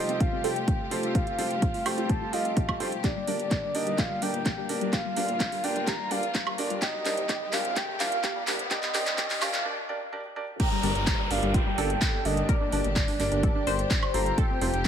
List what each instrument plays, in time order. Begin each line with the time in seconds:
Already playing: string section C3 G3 A3 F4 G4, felt piano F4 G4 A4 C5, soft synth lead D#5
0.09 detuned saw bass F1, synth arpeggio sound C4, closed hi-hat
0.20 synth arpeggio sound G4, soft synth lead F5, kick, closed hi-hat
0.33 synth arpeggio sound C4
0.44 detuned saw bass F1, felt piano F4 G4 A4 C5, synth arpeggio sound A4, soft synth lead G5, open hi-hat
0.56 closed hi-hat
0.68 kick, closed hi-hat
0.91 detuned saw bass F1, felt piano F4 G4 A4 C5, open hi-hat
1.03 closed hi-hat
1.15 synth arpeggio sound C5, soft synth lead F5, kick, closed hi-hat
1.27 synth arpeggio sound F4, closed hi-hat
1.38 detuned saw bass F1, felt piano F4 G4 A4 C5, synth arpeggio sound F4, open hi-hat
1.51 detuned saw bass F1, closed hi-hat
1.62 synth arpeggio sound F4, kick, closed hi-hat
1.74 synth arpeggio sound F4, open hi-hat
1.85 detuned saw bass F1, felt piano F4 G4 A4 C5, soft synth lead G5, open hi-hat, high woodblock
1.98 detuned saw bass F1, synth arpeggio sound F4, closed hi-hat
2.09 synth arpeggio sound G4, soft synth lead A5, kick, closed hi-hat
2.21 synth arpeggio sound F4
2.33 detuned saw bass F1, felt piano F4 G4 A4 D#5, synth arpeggio sound F4, soft synth lead F5, open hi-hat
2.45 closed hi-hat
2.57 kick, closed hi-hat
2.69 kick, high woodblock
2.80 detuned saw bass F1, felt piano F4 G4 A4 C5, open hi-hat
2.92 closed hi-hat
3.04 string section A#2 D3 G3 A#3, synth arpeggio sound G4, soft synth lead D5, kick, clap, closed hi-hat, riser
3.16 synth arpeggio sound G3
3.27 detuned saw bass G1, synth arpeggio sound G3, felt piano D4 G4 A#4 D5, open hi-hat
3.40 detuned saw bass G1, closed hi-hat
3.51 synth arpeggio sound G3, kick, clap, closed hi-hat
3.63 synth arpeggio sound G3
3.75 detuned saw bass G1, felt piano D4 G4 A#4 D5, soft synth lead D#5, open hi-hat
3.87 detuned saw bass G1, synth arpeggio sound G3, closed hi-hat
3.98 synth arpeggio sound G4, soft synth lead F5, kick, clap, closed hi-hat
4.10 synth arpeggio sound G3
4.22 detuned saw bass G1, synth arpeggio sound G3, felt piano D4 G4 A#4 D5, soft synth lead G5, open hi-hat
4.34 closed hi-hat
4.46 synth arpeggio sound G3, kick, clap, closed hi-hat
4.58 synth arpeggio sound G3
4.69 detuned saw bass G1, felt piano D4 G4 A#4 D5, open hi-hat
4.81 synth arpeggio sound G3, closed hi-hat
4.93 string section F4, synth arpeggio sound G4, soft synth lead F5, kick, clap, closed hi-hat
5.05 synth arpeggio sound G3
5.16 detuned saw bass G1, synth arpeggio sound G3, felt piano D4 G4 A#4 D5, open hi-hat
5.28 detuned saw bass G1, closed hi-hat
5.40 synth arpeggio sound G3, kick, clap, closed hi-hat
5.52 synth arpeggio sound G3, open hi-hat
5.64 detuned saw bass G1, felt piano D4 G4 A#4 D5, soft synth lead G5, open hi-hat
5.76 detuned saw bass G1, synth arpeggio sound G3, closed hi-hat
5.87 synth arpeggio sound G4, soft synth lead A#5, kick, clap, closed hi-hat
5.99 synth arpeggio sound G3
6.11 detuned saw bass G1, synth arpeggio sound G3, felt piano D4 G4 A#4 D5, soft synth lead F5, open hi-hat
6.23 closed hi-hat
6.35 synth arpeggio sound G3, kick, clap, closed hi-hat
6.47 synth arpeggio sound G3, high woodblock
6.58 detuned saw bass G1, felt piano D4 G4 A#4 D5, open hi-hat
6.70 synth arpeggio sound G3, closed hi-hat
6.82 string section C3 D#3 G4, synth arpeggio sound G4, soft synth lead D#5, kick, clap, closed hi-hat
6.94 synth arpeggio sound G3
7.05 detuned saw bass C2, synth arpeggio sound G3, felt piano D4 G4 A#4 D5, clap, open hi-hat
7.17 detuned saw bass C2, closed hi-hat
7.29 synth arpeggio sound G4, kick, clap, closed hi-hat
7.41 synth arpeggio sound G3
7.53 detuned saw bass C2, synth arpeggio sound G3, felt piano D4 G4 A#4 D5, soft synth lead F5, clap, open hi-hat
7.65 detuned saw bass C2, closed hi-hat
7.76 synth arpeggio sound G4, soft synth lead G5, kick, clap, closed hi-hat
7.88 synth arpeggio sound G3
8.00 detuned saw bass C2, synth arpeggio sound G3, felt piano D4 G4 A#4 D5, soft synth lead F5, clap, open hi-hat
8.12 closed hi-hat
8.24 synth arpeggio sound G4, kick, clap, closed hi-hat
8.36 synth arpeggio sound G3
8.47 detuned saw bass C2, synth arpeggio sound G3, felt piano D4 G4 A#4 D5, clap, open hi-hat
8.59 closed hi-hat
8.71 felt piano D4 G4 A#4 D5, string section D#4, synth arpeggio sound G4, soft synth lead D#5, kick, clap, closed hi-hat
8.83 synth arpeggio sound G3, clap, closed hi-hat
8.94 detuned saw bass C2, felt piano D4 G4 A#4 D5, synth arpeggio sound G4, clap, open hi-hat
9.06 detuned saw bass C2, synth arpeggio sound G3, clap, closed hi-hat
9.18 felt piano D4 G4 A#4 D5, synth arpeggio sound G4, kick, clap, closed hi-hat
9.30 synth arpeggio sound G3, clap, open hi-hat
9.42 detuned saw bass C2, felt piano D4 G4 A#4 D5, synth arpeggio sound G4, soft synth lead F5, clap, open hi-hat, high woodblock
9.54 detuned saw bass C2, synth arpeggio sound G3, clap, closed hi-hat
9.65 felt piano D4 G4 A#4 D5
9.89 felt piano D4 G4 A#4 D5
10.13 felt piano D4 G4 A#4 D5
10.36 felt piano D4 G4 A#4 D5
10.60 string section A#2 D3 G3 D4 G4, synth arpeggio sound G4, soft synth lead A#5, kick, closed hi-hat, crash, downlifter
10.72 synth arpeggio sound G3
10.83 detuned saw bass G1, synth arpeggio sound G3, felt piano D4 G4 A#4 D5, open hi-hat
10.95 detuned saw bass G1, soft synth lead A#5, closed hi-hat
11.07 synth arpeggio sound G3, kick, clap, closed hi-hat
11.19 synth arpeggio sound G3
11.30 detuned saw bass G1, felt piano D4 G4 A#4 D5, soft synth lead F5, open hi-hat
11.43 detuned saw bass G1, synth arpeggio sound G3, closed hi-hat
11.54 synth arpeggio sound F4, soft synth lead G5, kick, closed hi-hat
11.66 synth arpeggio sound G3
11.78 detuned saw bass G1, felt piano D4 G4 A#4 D5, synth arpeggio sound A4, soft synth lead G5, open hi-hat
11.90 closed hi-hat
12.02 kick, clap, closed hi-hat
12.25 detuned saw bass G1, felt piano D4 G4 A#4 D5, soft synth lead D#5, open hi-hat
12.37 closed hi-hat
12.49 synth arpeggio sound A#4, soft synth lead D5, kick, closed hi-hat
12.61 synth arpeggio sound D4
12.72 detuned saw bass G1, felt piano D4 G4 A#4 D5, synth arpeggio sound D4, open hi-hat
12.84 detuned saw bass G1, closed hi-hat
12.96 synth arpeggio sound D4, soft synth lead D5, kick, clap, closed hi-hat
13.08 synth arpeggio sound D4, open hi-hat
13.20 detuned saw bass G1, felt piano D4 G4 A#4 D5, clap, open hi-hat
13.32 detuned saw bass G1, synth arpeggio sound D4, closed hi-hat
13.43 synth arpeggio sound A4, kick, closed hi-hat
13.55 synth arpeggio sound D4
13.67 detuned saw bass G1, felt piano D4 G4 A#4 D5, synth arpeggio sound C5, open hi-hat
13.79 closed hi-hat
13.91 kick, clap, closed hi-hat
14.03 high woodblock
14.14 detuned saw bass G1, felt piano F4 G4 A4 C5, soft synth lead A#5, open hi-hat
14.26 closed hi-hat
14.38 string section C3 A3 F4, synth arpeggio sound A4, soft synth lead G5, kick, closed hi-hat
14.50 synth arpeggio sound C4
14.61 detuned saw bass F1, synth arpeggio sound C4, felt piano F4 G4 A4 C5, open hi-hat
14.73 detuned saw bass F1, soft synth lead G5, closed hi-hat